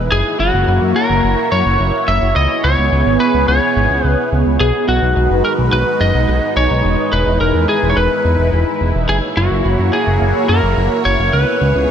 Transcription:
Already playing: analog synth pad E4
0.12 analog synth bass F#1, analog synth pad A#3 F#4 C#5, lead electric guitar G#4
0.40 analog synth bass F#1, lead electric guitar F#4
0.54 analog synth bass F#1
0.68 analog synth bass F#1
0.82 analog synth bass F#2
0.96 lead electric guitar A#4
1.10 analog synth bass F#1
1.24 analog synth bass F#1
1.52 analog synth bass F#2, lead electric guitar C#5
1.66 analog synth bass F#1
1.80 analog synth bass F#1
2.08 analog synth bass F#1, lead electric guitar E5
2.22 analog synth bass F#1
2.36 analog synth bass C#2, analog synth pad B3 G#4, lead electric guitar D#5
2.64 analog synth bass C#2, lead electric guitar C#5
2.78 analog synth bass C#2
2.92 analog synth bass C#2
3.06 analog synth bass G#1
3.20 lead electric guitar B4
3.34 analog synth bass C#2
3.48 analog synth bass C#2, lead electric guitar C#5
3.76 analog synth bass G#1
3.90 analog synth bass C#2
4.04 analog synth bass C#2, lead electric guitar B4
4.32 analog synth bass C#2
4.46 analog synth bass C#2
4.60 analog synth bass B1, analog synth pad G#3 D#4 F#4 B4, lead electric guitar G#4
4.88 analog synth bass B1, lead electric guitar F#4
5.02 analog synth bass B1
5.16 analog synth bass B1
5.30 analog synth bass F#1
5.45 lead electric guitar A#4
5.58 analog synth bass B1
5.72 analog synth bass B1, lead electric guitar B4
6.01 analog synth bass F#1, lead electric guitar D#5
6.15 analog synth bass B1
6.29 analog synth bass B1
6.57 analog synth bass B1, lead electric guitar C#5
6.71 analog synth bass B1
6.85 analog synth bass E1, analog synth pad E4 B4
7.13 analog synth bass E1, lead electric guitar B4
7.27 analog synth bass E1
7.41 analog synth bass E1, lead electric guitar A#4
7.55 analog synth bass E2
7.69 lead electric guitar G#4
7.83 analog synth bass E1
7.90 lead electric guitar C#5
7.97 analog synth bass E1, lead electric guitar B4
8.25 analog synth bass E2
8.39 analog synth bass E1
8.53 analog synth bass E1
8.81 analog synth bass E1
8.95 analog synth bass E1
9.09 analog synth bass F#1, analog synth pad A#3 F#4 C#5, lead electric guitar G#4
9.37 analog synth bass F#1, lead electric guitar F#4
9.51 analog synth bass F#1
9.65 analog synth bass F#1
9.79 analog synth bass F#2
9.93 lead electric guitar G#4
10.07 analog synth bass F#1
10.21 analog synth bass F#1
10.49 analog synth bass F#2, lead electric guitar A#4
10.63 analog synth bass F#1
10.77 analog synth bass F#1
11.05 analog synth bass F#1, lead electric guitar C#5
11.19 analog synth bass F#1
11.33 analog synth bass C#2, analog synth pad B3 G#4, lead electric guitar B4
11.61 analog synth bass C#2
11.75 analog synth bass C#2

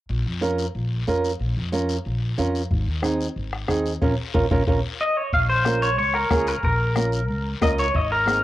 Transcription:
0.09 upright bass A#1, long guiro
0.26 upright bass F2
0.41 nylon-string guitar C#4 F4 A#4, short guiro
0.58 short guiro
0.75 upright bass A#1, long guiro
1.07 upright bass F2, nylon-string guitar C#4 F4 A#4, short guiro
1.24 short guiro
1.40 upright bass A#1, long guiro
1.57 upright bass F2
1.72 nylon-string guitar C#4 F4 A#4, short guiro
1.89 short guiro
2.05 upright bass A#1, long guiro
2.38 upright bass F2, nylon-string guitar C#4 F4 A#4, short guiro
2.55 short guiro
2.71 upright bass G#1, bombo low, long guiro
2.87 upright bass D#2
3.02 nylon-string guitar C4 D#4 G#4, bombo rim, short guiro
3.21 short guiro
3.36 upright bass G#1, long guiro
3.53 bombo rim
3.68 upright bass D#2, nylon-string guitar C4 D#4 G#4, bombo low, bombo rim, short guiro
3.86 short guiro
4.02 upright bass A#1, nylon-string guitar C#4 F4 A#4, bombo low, long guiro
4.34 upright bass A#1, nylon-string guitar C#4 F4 A#4, bombo low, long guiro
4.51 upright bass A#1, nylon-string guitar C#4 F4 A#4, bombo low, long guiro
4.67 upright bass A#1, nylon-string guitar C#4 F4 A#4, bombo low, long guiro
5.01 clean electric guitar D#5
5.17 clean electric guitar C#5
5.33 upright bass A#1, clean electric guitar F5, bombo low, high conga, long guiro
5.49 clean electric guitar C5
5.65 nylon-string guitar C#4 F4 A#4, bombo rim, high conga, short guiro
5.82 clean electric guitar C#5, short guiro
5.98 upright bass C#2, clean electric guitar C#5, high conga, long guiro
6.14 clean electric guitar A#4, bombo rim
6.30 upright bass C#2, nylon-string guitar C#4 F4 A#4, clean electric guitar G#4, bombo low, bombo rim, high conga, short guiro
6.47 clean electric guitar A#4, short guiro
6.63 upright bass A#1, clean electric guitar A#4, bombo low, high conga, long guiro
6.96 nylon-string guitar C#4 F4 A#4, bombo rim, high conga, short guiro
7.12 short guiro
7.28 upright bass C#2, high conga, long guiro
7.61 upright bass C#2, nylon-string guitar C#4 F4 A#4, clean electric guitar D#5, bombo low, bombo rim, high conga, short guiro
7.78 clean electric guitar C#5, short guiro
7.94 upright bass G#1, clean electric guitar D#5, bombo low, high conga, long guiro
8.12 clean electric guitar A#4
8.26 nylon-string guitar C4 D#4 G#4, bombo rim, high conga, short guiro

